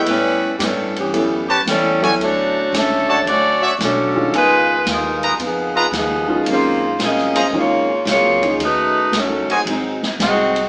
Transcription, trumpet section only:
X:1
M:4/4
L:1/8
Q:"Swing" 1/4=112
K:F#dor
V:1 name="Trumpet section"
z4 z [=GBca] z [Fc=d^g] | z3 [Fc=da] z [Fcde] z2 | z3 [^EBd^a] z [EBda] z2 | z3 [G^B^e^a] z4 |
z3 [F^Bdg] z4 |]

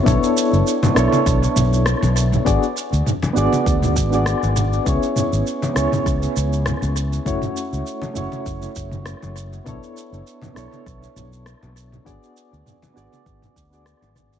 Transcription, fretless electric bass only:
X:1
M:4/4
L:1/16
Q:"Swing 16ths" 1/4=100
K:Bdor
V:1 name="Fretless electric bass" clef=bass
B,,, z2 F,,, z2 B,,, z B,,, z B,,,2 z B,,,2 z | G,,, z2 D,, z2 G,,, z D,,2 G,,,2 z G,,,2 z | C,, z2 G,,, z2 C,, z C,, z C,,2 z C,,2 z | F,,, z2 C,, z2 F,,, z F,,, z F,,,2 z F,,,2 z |
B,,, z2 F,,, z2 B,,, z B,,, z B,,,2 z B,,,2 z | G,,, z2 D,, z2 G,,, z G,,, z D,,2 z G,,,2 z |]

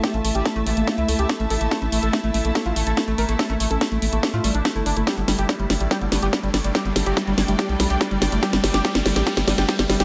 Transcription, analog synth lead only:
X:1
M:4/4
L:1/16
Q:1/4=143
K:none
V:1 name="Analog synth lead"
G A, A, G A, A, z A, A, E A, G A, A, A A, | A A, A, A A, A, z A, A, F A, A A, A, _B A, | A A, A, A A, A, z A, A, F A, D A, A, D A, | G G, G, G G, G, z G, G G, G, G G, G, z G, |
G G, G, G G, G, z G, G G, G, G G, G, z G, | G G, G, G G G, G, G G G, G, G G G, G, G |]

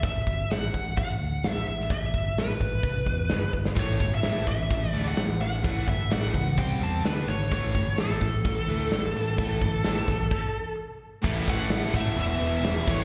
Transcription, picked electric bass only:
X:1
M:4/4
L:1/8
Q:1/4=128
K:Edor
V:1 name="Picked electric bass" clef=bass
A,,, G,,, A,,, A,,, A,,, D,, A,,, A,,, | A,,, G,,, A,,, A,,, =C,, E,, G,,, G,,, | A,,, G,,, A,,, A,,, A,,, D,, A,,, A,,, | A,,, G,,, A,,, C,, =C,, E,, D,, ^G,,, |
A,,, G,,, A,,, A,,, A,,, D,, A,,, A,,, | A,,, G,,, A,,, B,,, z4 | A,,, A,,, A,,, A,,, E,,, E,,, E,,, A,,, |]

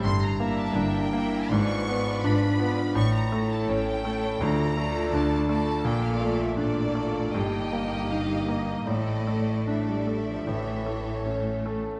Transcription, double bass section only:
X:1
M:4/4
L:1/16
Q:1/4=81
K:Aphr
V:1 name="Double bass section" clef=bass
G,,,4 G,,,4 ^G,,,4 G,,,4 | A,,,4 A,,,4 D,,4 D,,4 | B,,,4 A,,,4 G,,,8 | A,,,8 A,,,6- A,,, z |]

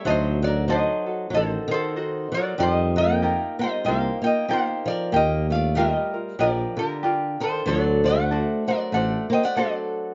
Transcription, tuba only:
X:1
M:4/4
L:1/8
Q:"Swing" 1/4=95
K:Dphr
V:1 name="Tuba" clef=bass
D,,4 A,,, z3 | F,,4 C,, z3 | E,,4 B,,, z3 | D,,4 A,,, z3 |]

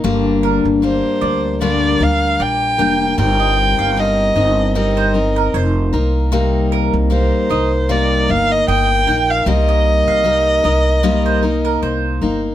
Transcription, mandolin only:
X:1
M:4/4
L:1/16
Q:"Swing 16ths" 1/4=76
K:Cm
V:1 name="Mandolin"
z2 B z3 d z4 z d z g z | z e z f2 z e z2 c z B c3 z | z2 B z3 e z4 z e z g z | z e z f2 z e z2 c z B c3 z |]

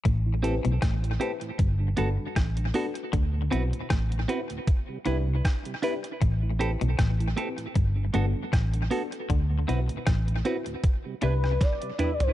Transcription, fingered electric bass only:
X:1
M:4/4
L:1/16
Q:"Swing 16ths" 1/4=78
K:Ador
V:1 name="Fingered electric bass" clef=bass
A,,,3 B,,, A,,,2 z2 G,,,2 G,,, z A,,,2 z2 | D,,2 B,,, z A,,,2 z4 C,,2 z4 | A,,,3 B,,, A,,,2 z2 G,,,2 G,,, z A,,,2 z2 | D,,2 B,,, z A,,,2 z4 C,,2 z4 |]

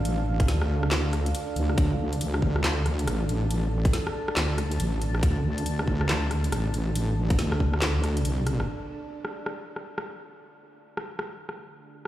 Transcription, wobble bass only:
X:1
M:4/4
L:1/8
Q:"Swing 16ths" 1/4=139
K:Dm
V:1 name="Wobble bass" clef=bass
A,,,2 D,,4 z D,, | D,,6 A,,,2- | A,,,2 z2 D,,2 A,,,2 | D,,6 A,,,2- |
A,,,2 D,,4 C,,2 | z8 | z8 |]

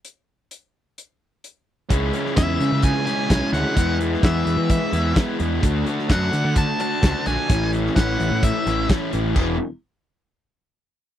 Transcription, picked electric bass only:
X:1
M:4/4
L:1/16
Q:1/4=129
K:Emix
V:1 name="Picked electric bass" clef=bass
z16 | C,,2 z2 E,,2 C, C,2 z3 B,,, z D,, z | E,,4 E,,2 E,, E,2 z E,,2 z2 E,,2 | D,,2 z2 F,,2 D, D,2 z3 C,, z ^A,,, z |
A,,,4 A,,,2 A,,, A,,2 z A,,,2 z2 A,,,2 | E,,,2 z12 z2 |]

